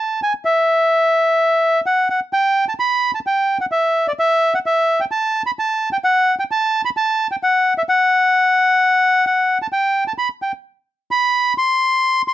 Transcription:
Already playing: A5
0.23 G#5
0.45 E5
1.86 F#5
2.10 F#5
2.33 G5
2.69 A5
2.80 B5
3.15 A5
3.27 G5
3.61 F#5
3.72 E5
4.08 D5
4.19 E5
4.54 F#5
4.66 E5
5.00 G5
5.11 A5
5.46 B5
5.59 A5
5.93 G5
6.04 F#5
6.39 G5
6.51 A5
6.85 B5
6.97 A5
7.31 G5
7.43 F#5
7.78 E5
7.89 F#5
9.27 F#5
9.62 A5
9.72 G5
10.08 A5
10.18 B5
10.42 G5
11.11 B5
11.58 C6
12.28 C6

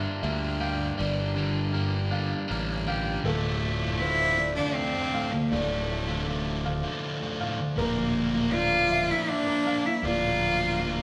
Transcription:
Already playing: G2 D3 G3 A#3 D4 F4 A#4 E5
0.22 D2 G2 D3 G3 A#3 E5
0.60 G2 D3 G3 G4 F5
0.97 G1 G2 D3 G3 D5
1.02 E3
1.35 G2 D3 G3
1.73 G2 D3 G3 A#3
2.11 G2 D3 G3 D4 F5
2.48 A1 G2 D3 G3 A#3
2.87 G2 D3 G3 G4 F5
3.24 D1 D2 A2 D3 F3 A3 F4 A4
3.28 D5 A5
3.82 D3 A3 F4
4.00 D2 A2 D3 A3 E4 F4 C5
4.39 D5, muted distorted electric guitar stroke
4.55 D3 A3 D4 F4
4.75 C4 D5
4.95 D3 A3 F4
5.14 A2 D3 A3 F4 F5
5.32 A#3, muted distorted electric guitar stroke
5.50 D1 D2 A2 D3 A3 F4 D5
6.07 D3 A3 F4
6.26 D2 A2 D3 A3 F4
6.65 F5, muted distorted electric guitar stroke
6.83 D3 A3 F4
7.21 D3 A3 F4
7.40 A2 D3 A3 F4 F5
7.59 muted distorted electric guitar stroke
7.77 D1 A#2 F3 A#3 D4 F4 A#4 D5 A#5
8.34 A#3 D4 F4 A#4
8.52 A#2 F3 A#3 D4 F4 A#4 D5
8.90 E5, muted distorted electric guitar stroke
9.09 A#3 D4 E4 F4 A#4
9.29 D4 E5
9.47 A#3 D4 F4 A#4
9.66 A#3 D4 F4 A#4 F5
9.85 E4, muted distorted electric guitar stroke
10.03 D1 A#2 F3 A#3 D4 F4 A#4 D5
10.60 A#3 D4 F4 A#4
10.79 A#2 F3 A#3 D4 F4 A#4

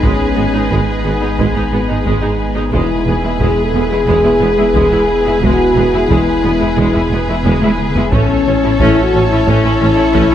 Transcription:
Already playing: G#1 G#3 B3 D#4 G#4 B4
0.03 G#1 G#2 G#3 C#4, taiko
0.36 G#1 G#2 G#3 B3
0.53 G#2 G#3 D#4
0.70 G#1 G#2 G#3 B3, taiko
1.04 G#1 G#2 G#3 B3
1.21 G#2 G#3 D#4
1.39 G#1 G#2 G#3, taiko
1.55 G#2 G#3 D#4
1.72 G#1 G#2 G#3 B3
1.89 G#2 G#3 D#4
2.05 G#1 G#2 G#3, taiko
2.22 G#2 G#3 D#4
2.56 G#2 G#3 D#4
2.72 E1 E2 G#3 B3 E4 G#4 B4, taiko
3.07 E1 E2 G#3 B3
3.23 E2 G#3 E4
3.40 E1 E2 G#3 G#4, taiko
3.63 A4
3.73 E1 E2 G#3 B3
3.84 G#4
3.91 E2 G#3 E4
4.07 E1 E2 G#3, taiko
4.24 E2 G#3 E4
4.41 E1 E2 G#3 B3
4.58 E2 G#3 E4
4.74 E1 E2 G#3, taiko
4.92 E2 G#3 E4
5.26 E2 G#3 E4
5.42 E1 E2 G#3 F#4, taiko
5.76 E1 E2 G#3 B3
5.93 E2 G#3 E4
6.09 E1 E2 G#3 E4, taiko
6.43 E1 E2 G#3 B3
6.60 E2 G#3 E4
6.76 E1 E2 G#3, taiko
6.94 E2 G#3 E4
7.11 E1 E2 G#3 B3
7.28 E2 G#3 E4
7.44 E1 E2 G#3, taiko mid
7.61 E2 G#3 E4, taiko high
7.79 taiko mid
7.95 E2 G#3 E4, taiko low
8.12 A1 A2 A3 C#4 E4 A4 C#5, taiko
8.46 A1 A2 C#4
8.64 A2 C#4 E4
8.79 A1 A2 A3 C#4 E4, taiko
9.02 F#4
9.14 A1 A2 C#4
9.25 E4
9.31 A2 C#4 E4
9.47 A1 A2 A3 C#4, taiko
9.64 A2 C#4 E4
9.81 A1 A2 C#4
9.97 A2 C#4 E4
10.13 A1 A2 A3 C#4, taiko
10.31 C#4 E4

